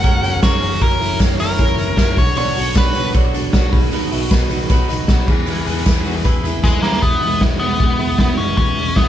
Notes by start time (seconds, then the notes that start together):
Already playing: C#3 F#3 G#3 A#3 F#4 F#5
0.03 F#1 G#3 C#4 F#4 A#4, kick, hi-hat pedal, open hi-hat, tambourine
0.23 F#1 C#4 F#4 A#4, hi-hat pedal, open hi-hat, tambourine
0.42 F#3 G#3 C#4 F#4 A#4, kick, snare, hi-hat pedal, open hi-hat, tambourine
0.60 F#1 C#4 F#4 A#4, hi-hat pedal, open hi-hat, tambourine
0.80 F#1 E3 F#3 A#3 C#4 E4 F#4 A#4 C#5, kick, open hi-hat, tambourine
0.99 F#1 C#4 E4 A#4, hi-hat pedal, open hi-hat, tambourine
1.19 F#1 F#3 C#4 E4 A#4, kick, snare, hi-hat pedal, open hi-hat, tambourine
1.38 F#1 C#4 E4 A#4, hi-hat pedal, open hi-hat, tambourine
1.58 F#1 F#3 C#4 E4 G#4 A#4, kick, hi-hat pedal, open hi-hat, tambourine
1.69 A#4
1.78 F#1 C#4 E4 A#4, hi-hat pedal, open hi-hat, tambourine
1.97 F#1 F#3 C#4 E4 A#4, kick, snare, hi-hat pedal, open hi-hat, tambourine
2.17 B1 B2 D3 B3 D4 F#4 C#5, kick, hi-hat pedal, open hi-hat, tambourine
2.36 B2 F#3 B3 D4 F#4 C#5, hi-hat pedal, open hi-hat, tambourine
2.55 B1 B3 D4 F#4 C#5, hi-hat pedal, open hi-hat, tambourine
2.74 B1 B3 D4 F#4 B4 C#5, kick, snare, hi-hat pedal, open hi-hat, tambourine
2.94 B1 B3 D4 F#4 C#5, hi-hat pedal, open hi-hat, tambourine
3.13 B1 B2 F#3 B3 D4 F#4 B4 C#5, kick, hi-hat pedal, open hi-hat, tambourine
3.25 C#5
3.33 B1 B3 D4 F#4 C#5, hi-hat pedal, open hi-hat, tambourine
3.52 B1 B3 D4 F#4 C#5, kick, snare, hi-hat pedal, open hi-hat, tambourine
3.72 B1 B2 D#3 F#3 B3 D#4 F#4 G#4 B4, kick, hi-hat pedal, open hi-hat
3.92 B2 F#3 B3 D#4 F#4 B4, hi-hat pedal, open hi-hat
4.02 D#4
4.11 B1 B3 D#4 E4 F#4 B4, hi-hat pedal, open hi-hat, tambourine
4.22 F#4
4.31 B1 B3 D#4 F#4 B4, kick, snare, hi-hat pedal, open hi-hat, tambourine
4.50 B1 B3 D#4 F#4 B4, hi-hat pedal, open hi-hat, tambourine
4.69 B1 B2 F#3 B3 D#4 F#4 B4, kick, hi-hat pedal, open hi-hat, tambourine
4.88 B1 B3 D#4 F#4 B4, hi-hat pedal, open hi-hat, tambourine
5.07 B1 B3 D#4 F#4 B4, kick, snare, hi-hat pedal, open hi-hat, tambourine
5.27 E2 E3 G#3 E4 G#4 B4, kick, tambourine, crash
5.46 E3 B3 E4 G#4 B4, hi-hat pedal, open hi-hat
5.66 E2 E4 G#4 B4, hi-hat pedal, open hi-hat, tambourine
5.85 E2 B3 E4 G#4 B4, kick, snare, hi-hat pedal, open hi-hat, tambourine
6.05 E2 E4 F#4 G#4 B4, hi-hat pedal, open hi-hat, tambourine
6.16 G#4
6.24 E2 E3 B3 E4 G#4 B4, kick, hi-hat pedal, open hi-hat, tambourine
6.44 E2 E4 G#4 B4, hi-hat pedal, open hi-hat, tambourine
6.63 E2 G#3 B3 E4 G#4 B4, kick, snare, tambourine
6.82 D#2 A#3 E4 G#4 B4, snare
6.93 snare
7.02 E1 E3 G#3 B3 E4, kick, closed hi-hat
7.22 E1 G#3 B3 E4, open hi-hat
7.41 E1 E3 G#3 B3 E4, kick, snare, closed hi-hat
7.61 E1 G#3 B3 E4, open hi-hat
7.80 E1 E3 G#3 B3 E4, kick, closed hi-hat
7.99 E1 G#3 B3 E4, open hi-hat
8.18 E1 E3 G#3 B3 E4, kick, snare, closed hi-hat
8.37 F#1 G#3 B3 C#4 E4, open hi-hat
8.57 E1 E3 G#3 B3 C#4 E4, kick, closed hi-hat
8.76 E1 G#3 B3 E4, open hi-hat
8.95 E1 E3 G#3 B3 E4, kick, snare, closed hi-hat